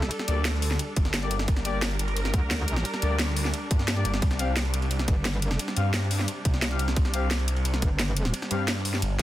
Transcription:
0.00 9.22 G3 medium
0.00 9.22 D4 medium
0.00 1.45 A4 medium
0.00 snare medium
0.00 snare soft
0.11 closed hi-hat medium
0.11 ride medium
0.19 snare soft
0.28 0.78 D2 loud
0.28 0.42 A#3 medium
0.28 0.42 G4 medium
0.28 0.42 D5 loud
0.28 closed hi-hat loud
0.28 ride medium
0.45 snare loud
0.45 closed hi-hat medium
0.45 ride medium
0.54 snare soft
0.62 open hi-hat medium
0.62 ride medium
0.71 snare soft
0.79 closed hi-hat medium
0.79 ride medium
0.96 1.47 G1 loud
0.96 kick loud
0.96 closed hi-hat medium
0.96 ride medium
1.05 snare soft
1.14 snare loud
1.14 closed hi-hat medium
1.14 ride medium
1.22 1.37 A#3 medium
1.22 1.37 G4 medium
1.22 1.37 D5 loud
1.22 snare soft
1.31 closed hi-hat medium
1.31 ride medium
1.39 snare medium
1.48 4.20 A#4 medium
1.48 kick loud
1.48 closed hi-hat medium
1.48 ride medium
1.57 snare medium
1.57 snare soft
1.65 1.80 A#3 medium
1.65 1.80 G4 medium
1.65 1.80 D5 loud
1.65 closed hi-hat medium
1.65 ride medium
1.82 snare loud
1.82 closed hi-hat medium
1.82 ride medium
1.91 ride soft
1.99 closed hi-hat medium
1.99 ride medium
2.08 ride soft
2.16 closed hi-hat medium
2.16 ride medium
2.25 snare soft
2.34 2.84 D2 loud
2.34 kick loud
2.34 closed hi-hat medium
2.34 ride medium
2.51 snare loud
2.51 closed hi-hat medium
2.51 ride medium
2.59 ride soft
2.68 closed hi-hat medium
2.68 ride medium
2.76 snare medium
2.76 snare soft
2.85 closed hi-hat medium
2.85 ride medium
2.94 snare soft
3.02 3.52 D2 loud
3.02 3.17 A#3 medium
3.02 3.17 G4 medium
3.02 3.17 D5 medium
3.02 closed hi-hat medium
3.02 ride medium
3.19 snare loud
3.19 closed hi-hat medium
3.19 ride medium
3.28 snare soft
3.36 open hi-hat medium
3.36 ride medium
3.45 snare soft
3.54 closed hi-hat medium
3.54 ride medium
3.71 4.04 G2 medium
3.71 kick loud
3.71 closed hi-hat medium
3.71 ride medium
3.79 snare soft
3.88 snare loud
3.88 closed hi-hat medium
3.88 ride medium
3.96 4.11 A#3 medium
3.96 4.11 G4 medium
3.96 4.11 D5 loud
3.96 snare soft
4.05 4.21 G1 medium
4.05 closed hi-hat medium
4.05 ride medium
4.14 snare medium
4.14 snare soft
4.22 5.07 C2 loud
4.22 9.22 C3 medium
4.22 kick loud
4.22 closed hi-hat medium
4.22 ride medium
4.31 snare medium
4.31 snare soft
4.39 4.54 C4 loud
4.39 4.54 G4 medium
4.39 4.54 F5 loud
4.39 closed hi-hat medium
4.39 ride medium
4.56 snare loud
4.56 closed hi-hat medium
4.56 ride medium
4.65 ride soft
4.74 closed hi-hat medium
4.74 ride medium
4.82 ride soft
4.91 closed hi-hat medium
4.91 ride medium
4.99 snare soft
5.08 5.58 G1 loud
5.08 kick loud
5.08 closed hi-hat medium
5.08 ride medium
5.25 snare loud
5.25 closed hi-hat medium
5.25 ride medium
5.34 ride soft
5.42 closed hi-hat medium
5.42 ride medium
5.51 snare medium
5.51 snare soft
5.59 closed hi-hat medium
5.59 ride medium
5.68 snare soft
5.76 6.27 G2 medium
5.76 5.91 C4 medium
5.76 5.91 G4 medium
5.76 5.91 F5 medium
5.76 closed hi-hat medium
5.76 ride medium
5.94 snare loud
5.94 closed hi-hat medium
5.94 ride medium
6.02 snare soft
6.11 open hi-hat medium
6.11 ride medium
6.19 snare soft
6.28 closed hi-hat medium
6.28 ride medium
6.45 6.95 C2 loud
6.45 kick loud
6.45 closed hi-hat medium
6.45 ride medium
6.54 snare soft
6.62 snare loud
6.62 closed hi-hat medium
6.62 ride medium
6.71 6.85 C4 medium
6.71 6.85 G4 medium
6.71 6.85 F5 loud
6.71 snare soft
6.79 closed hi-hat medium
6.79 ride medium
6.88 snare medium
6.88 snare soft
6.96 7.81 C2 loud
6.96 kick loud
6.96 closed hi-hat medium
6.96 ride medium
7.05 snare medium
7.05 snare soft
7.14 7.28 C4 loud
7.14 7.28 G4 medium
7.14 7.28 F5 loud
7.14 closed hi-hat loud
7.14 ride medium
7.31 snare loud
7.31 closed hi-hat medium
7.31 ride medium
7.39 ride soft
7.48 closed hi-hat loud
7.48 ride medium
7.57 ride soft
7.65 closed hi-hat medium
7.65 ride medium
7.74 snare soft
7.82 8.32 G1 loud
7.82 kick loud
7.82 closed hi-hat medium
7.82 ride medium
7.99 snare loud
7.99 closed hi-hat medium
7.99 ride medium
8.08 ride soft
8.16 closed hi-hat medium
8.16 ride medium
8.25 snare soft
8.25 ride soft
8.34 closed hi-hat medium
8.34 ride medium
8.42 snare soft
8.51 9.01 G2 loud
8.51 8.65 C4 medium
8.51 8.65 G4 medium
8.51 8.65 F5 loud
8.51 closed hi-hat loud
8.51 ride medium
8.68 snare loud
8.68 closed hi-hat medium
8.68 ride medium
8.77 snare soft
8.85 open hi-hat medium
8.85 ride medium
8.94 snare soft
9.02 9.22 G1 medium
9.02 closed hi-hat medium
9.02 ride medium

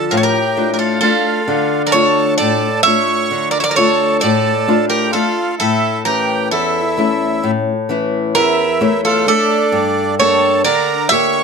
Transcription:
0.00 0.39 F3 soft
0.00 0.39 D4 soft
0.00 0.39 F4 soft
0.00 0.16 A4 medium
0.00 0.50 D5 medium
0.11 1.00 A2 medium
0.11 0.18 F4 medium
0.11 0.17 A#4 medium
0.17 0.24 A4 medium
0.17 0.23 C#5 medium
0.23 0.71 G4 medium
0.23 0.72 A#4 medium
0.57 1.02 A3 soft
0.57 1.01 D4 soft
0.57 1.02 F4 medium
0.73 0.78 G4 soft
0.73 0.78 A#4 medium
0.79 1.00 F4 medium
0.79 1.00 A4 medium
1.01 1.39 A3 soft
1.01 1.39 D4 soft
1.01 1.82 F4 medium
1.01 1.39 F4 medium
1.01 1.82 A4 medium
1.48 2.37 D3 medium
1.87 2.34 A4 medium
1.87 1.93 A#4 medium
1.87 1.92 D5 medium
1.92 2.67 A3 soft
1.92 2.67 D4 soft
1.92 2.67 F4 medium
1.92 2.35 C#5 medium
2.37 3.29 A2 medium
2.37 2.81 A4 medium
2.37 2.83 D5 medium
2.83 3.59 A3 soft
2.83 3.59 D4 soft
2.83 3.59 F4 medium
2.83 3.49 C#5 medium
2.83 3.49 E5 loud
3.31 4.20 D3 medium
3.51 3.58 A#4 medium
3.51 3.58 D5 medium
3.59 3.67 A#4 medium
3.59 3.65 C#5 medium
3.59 3.63 E5 medium
3.64 3.70 D5 medium
3.69 3.76 A#4 medium
3.69 3.76 D5 medium
3.74 4.50 A3 soft
3.74 4.51 D4 soft
3.74 4.51 F4 medium
3.74 4.17 A4 medium
3.74 4.21 C#5 medium
4.19 4.86 A4 medium
4.19 4.89 D5 loud
4.23 5.12 A2 medium
4.68 5.12 A3 medium
4.68 5.13 D4 soft
4.68 5.13 F4 medium
4.89 5.11 G4 medium
4.89 5.12 A#4 medium
5.11 5.51 A3 medium
5.11 5.51 D4 soft
5.11 5.55 F4 medium
5.11 5.51 F4 medium
5.11 5.59 A4 medium
5.59 6.49 A2 medium
5.59 6.02 E4 medium
5.59 6.03 A4 medium
6.05 6.79 E3 medium
6.05 6.79 C#4 soft
6.05 6.80 E4 medium
6.05 6.49 G4 medium
6.05 6.51 A#4 medium
6.51 7.41 E2 medium
6.51 7.51 E4 medium
6.51 7.51 A4 medium
6.97 7.71 A3 medium
6.97 7.71 C#4 soft
6.97 7.72 E4 medium
7.43 8.33 A2 medium
7.89 8.63 E3 medium
7.89 8.63 C#4 soft
7.89 8.63 E4 medium
8.35 9.24 E2 medium
8.35 9.01 E4 medium
8.35 9.00 A#4 medium
8.81 9.25 A3 medium
8.81 9.26 E4 medium
8.81 9.54 C#5 soft
9.05 9.26 F4 medium
9.05 9.26 A4 medium
9.26 9.64 A3 medium
9.26 10.15 D4 medium
9.26 9.64 E4 medium
9.26 10.19 A4 medium
9.72 10.62 G2 medium
10.19 10.93 A#3 soft
10.19 10.93 D4 soft
10.19 10.93 G4 medium
10.19 10.62 A4 medium
10.19 10.62 C#5 loud
10.64 11.44 D3 medium
10.64 11.08 A#4 medium
10.64 11.09 D5 loud
11.09 11.44 A#3 soft
11.09 11.44 D4 soft
11.09 11.44 G4 medium
11.09 11.44 C#5 loud
11.09 11.44 E5 loud

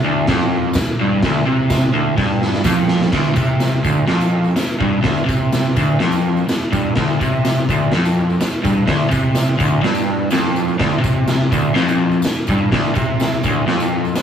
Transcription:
0.04 0.27 D2 loud
0.27 0.75 F2 loud
0.27 kick loud
0.27 snare loud
0.27 crash medium
0.73 muted overdriven electric guitar stroke medium
0.73 kick loud
0.73 snare loud
0.73 tambourine medium
0.73 crash medium
1.00 1.23 G2 loud
1.23 1.46 D2 loud
1.23 kick loud
1.23 snare loud
1.23 crash medium
1.46 1.93 C3 loud
1.70 kick loud
1.70 snare loud
1.70 tambourine medium
1.70 crash medium
1.93 2.16 D2 loud
2.17 2.64 G2 loud
2.17 kick loud
2.17 snare medium
2.42 snare medium
2.53 snare medium
2.64 3.12 F2 loud
2.64 kick loud
2.64 snare loud
2.64 tambourine medium
2.88 snare loud
3.01 snare medium
3.12 3.35 D2 medium
3.12 kick loud
3.12 snare loud
3.12 crash loud
3.12 crash medium
3.23 tambourine soft
3.35 3.83 C3 loud
3.35 kick loud
3.35 tambourine medium
3.60 snare loud
3.60 tambourine medium
3.60 crash medium
3.84 4.06 D2 loud
3.84 kick medium
3.84 tambourine medium
4.07 4.55 F2 loud
4.07 snare loud
4.07 crash medium
4.21 tambourine medium
4.44 tambourine soft
4.56 muted overdriven electric guitar stroke medium
4.56 snare loud
4.56 tambourine medium
4.56 crash medium
4.80 5.01 G2 loud
4.80 kick loud
5.02 5.25 D2 loud
5.02 kick medium
5.02 snare loud
5.02 crash soft
5.17 tambourine soft
5.25 5.74 C3 loud
5.25 kick loud
5.25 tambourine medium
5.52 snare loud
5.52 tambourine medium
5.52 crash medium
5.76 5.99 D2 loud
5.76 kick loud
5.76 tambourine medium
6.00 6.47 F2 loud
6.00 snare loud
6.00 crash medium
6.12 tambourine medium
6.37 tambourine soft
6.47 muted overdriven electric guitar stroke medium
6.47 snare loud
6.47 tambourine medium
6.47 crash medium
6.72 6.95 G2 loud
6.72 kick loud
6.72 tambourine medium
6.96 7.19 D2 loud
6.96 kick loud
6.96 snare loud
6.96 crash medium
7.09 tambourine soft
7.21 7.68 C3 medium
7.21 kick loud
7.21 tambourine medium
7.45 snare loud
7.45 tambourine medium
7.45 crash medium
7.69 7.92 D2 loud
7.69 kick loud
7.69 tambourine medium
7.92 8.41 F2 loud
7.92 snare loud
7.92 crash medium
8.05 tambourine medium
8.30 tambourine soft
8.41 muted overdriven electric guitar stroke medium
8.41 snare loud
8.41 tambourine medium
8.41 crash medium
8.64 8.86 G2 loud
8.64 kick loud
8.64 tambourine medium
8.87 9.10 D2 loud
8.87 kick loud
8.87 snare loud
8.87 tambourine soft
8.87 crash medium
9.01 tambourine soft
9.10 9.58 C3 loud
9.10 kick loud
9.10 tambourine medium
9.24 tambourine soft
9.35 snare loud
9.35 tambourine loud
9.35 crash medium
9.47 tambourine soft
9.58 9.82 D2 loud
9.58 kick loud
9.58 tambourine medium
9.83 10.31 G2 medium
9.83 snare loud
9.83 tambourine soft
9.83 crash medium
9.95 tambourine medium
10.30 10.79 F2 loud
10.30 snare loud
10.30 tambourine medium
10.30 crash medium
10.43 tambourine soft
10.56 tambourine medium
10.68 tambourine soft
10.79 11.00 D2 loud
10.79 kick loud
10.79 snare loud
10.79 crash medium
10.91 tambourine soft
11.00 11.49 C3 medium
11.00 tambourine medium
11.04 kick loud
11.28 snare loud
11.28 tambourine medium
11.28 crash medium
11.52 11.74 D2 loud
11.52 kick loud
11.52 tambourine medium
11.74 12.22 F2 loud
11.74 snare loud
11.74 crash medium
11.88 tambourine medium
12.11 tambourine soft
12.22 snare loud
12.22 tambourine loud
12.22 crash medium
12.26 muted overdriven electric guitar stroke medium
12.47 12.71 G2 loud
12.47 kick loud
12.47 tambourine medium
12.72 12.95 D2 loud
12.72 kick loud
12.72 snare loud
12.72 crash medium
12.84 tambourine soft
12.95 13.42 C3 loud
12.95 kick loud
12.95 tambourine medium
13.20 snare loud
13.20 tambourine medium
13.20 crash medium
13.43 13.67 D2 loud
13.43 kick medium
13.43 tambourine medium
13.67 14.14 F2 loud
13.67 snare loud
13.67 crash medium
13.80 tambourine medium
14.05 tambourine soft
14.16 muted overdriven electric guitar stroke medium
14.16 snare loud
14.16 tambourine medium
14.16 crash medium

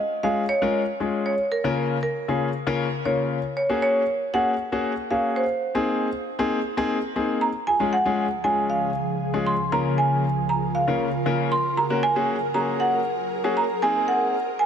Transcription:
0.00 0.25 D#5 medium
0.23 0.43 G#3 medium
0.23 0.43 C#4 medium
0.23 0.43 F4 medium
0.23 0.43 G#4 medium
0.23 0.50 F5 medium
0.49 1.25 C#5 medium
0.62 0.81 G#3 medium
0.62 0.81 C#4 medium
0.62 0.81 F4 medium
0.62 0.81 A#4 medium
1.00 1.32 G#3 medium
1.00 1.32 C#4 medium
1.00 1.32 F4 medium
1.00 1.32 G#4 medium
1.26 1.50 C#5 medium
1.52 2.02 A#4 medium
1.64 1.96 C#3 medium
1.64 1.96 A#3 medium
1.64 1.96 C#4 medium
1.64 1.96 F4 medium
1.64 1.96 A#4 medium
2.03 3.09 A#4 medium
2.28 2.48 C#3 medium
2.28 2.48 A#3 medium
2.28 2.48 C#4 medium
2.28 2.48 F4 medium
2.28 2.48 G#4 medium
2.67 2.86 C#3 loud
2.67 2.86 A#3 medium
2.67 2.86 C#4 medium
2.67 2.86 F4 medium
2.67 2.86 A#4 loud
3.05 3.37 C#3 medium
3.05 3.37 A#3 medium
3.05 3.37 C#4 medium
3.05 3.38 F4 medium
3.05 3.38 A#4 medium
3.05 3.56 C#5 medium
3.57 3.81 C#5 medium
3.69 4.01 A#3 medium
3.69 4.02 C#4 medium
3.69 4.02 F#4 medium
3.69 4.02 G#4 medium
3.82 4.35 C#5 medium
4.34 4.53 A#3 medium
4.34 4.53 C#4 medium
4.34 4.53 F#4 medium
4.34 4.53 G#4 medium
4.34 5.13 F#5 loud
4.72 4.91 A#3 medium
4.72 4.91 C#4 medium
4.72 4.91 F#4 medium
4.72 4.92 G#4 medium
5.10 5.43 A#3 medium
5.10 5.43 C#4 medium
5.10 5.43 F#4 medium
5.10 5.43 G#4 medium
5.10 5.22 F5 medium
5.36 6.09 C5 medium
5.75 6.07 A#3 medium
5.75 6.07 C4 medium
5.75 6.07 D#4 medium
5.75 6.07 G#4 medium
6.39 6.58 A#3 medium
6.39 6.58 C4 medium
6.39 6.58 D#4 medium
6.39 6.58 G#4 loud
6.77 6.96 A#3 medium
6.77 6.96 C4 medium
6.77 6.97 D#4 medium
6.77 6.97 G#4 loud
7.16 7.48 A#3 medium
7.16 7.48 C4 medium
7.16 7.48 D#4 medium
7.16 7.48 G#4 medium
7.41 7.68 A#5 loud
7.67 11.73 C#2 medium
7.67 11.73 C#3 medium
7.67 9.70 F3 medium
7.67 7.73 F4 soft
7.67 9.70 G#4 medium
7.67 7.74 G#4 soft
7.67 7.79 G#5 medium
7.80 7.93 G#3 medium
7.80 7.93 C#4 medium
7.80 7.93 F4 medium
7.80 7.93 G#4 medium
7.93 8.46 F#5 loud
8.05 8.25 G#3 medium
8.05 8.25 C#4 medium
8.05 8.25 F4 medium
8.05 8.25 G#4 medium
8.44 8.89 G#3 medium
8.44 8.89 C#4 medium
8.44 8.89 F4 medium
8.44 8.89 G#4 medium
8.44 8.70 G#5 medium
8.70 9.49 F5 loud
9.34 9.53 G#3 medium
9.34 9.53 C#4 medium
9.34 9.53 F4 medium
9.34 9.53 G#4 medium
9.47 9.73 C6 loud
9.72 10.23 C#3 medium
9.72 10.23 A#3 medium
9.72 10.23 C#4 medium
9.72 11.75 F4 medium
9.72 10.23 F4 medium
9.72 14.66 A#4 medium
9.72 10.24 A#4 medium
9.72 9.99 A#5 loud
9.98 10.51 G#5 loud
10.49 10.61 A#5 medium
10.75 11.54 F5 medium
10.87 11.07 C#3 medium
10.87 11.07 A#3 medium
10.87 11.07 C#4 medium
10.87 11.07 F4 medium
10.87 11.07 A#4 medium
11.26 11.51 C#3 medium
11.26 11.52 A#3 medium
11.26 11.52 C#4 medium
11.26 11.52 F4 medium
11.26 11.52 A#4 medium
11.52 11.63 C6 loud
11.77 13.80 F#2 medium
11.77 13.80 F#3 medium
11.77 11.84 F#4 soft
11.77 13.80 G#4 medium
11.77 11.84 G#4 medium
11.77 12.04 A#5 loud
11.90 12.03 A#3 medium
11.90 12.03 C#4 medium
11.90 12.03 F#4 medium
11.90 12.03 A#4 medium
12.03 12.56 G#5 loud
12.16 12.35 A#3 medium
12.16 12.35 C#4 medium
12.16 12.35 F#4 medium
12.16 12.35 G#4 medium
12.54 12.99 A#3 medium
12.54 12.99 C#4 medium
12.54 12.99 F#4 medium
12.54 12.99 G#4 medium
12.54 12.66 A#5 loud
12.80 13.59 F#5 loud
13.44 13.63 A#3 medium
13.44 13.63 C#4 medium
13.44 13.63 F#4 medium
13.44 13.63 G#4 medium
13.57 13.68 A#5 medium
13.82 14.66 G#2 medium
13.82 14.66 G#3 medium
13.82 14.33 A#3 medium
13.82 14.34 C4 medium
13.82 14.34 D#4 medium
13.82 14.34 G#4 medium
13.82 14.66 C5 medium
13.82 14.09 G#5 loud
14.08 14.61 F#5 loud
14.59 14.66 G#5 medium

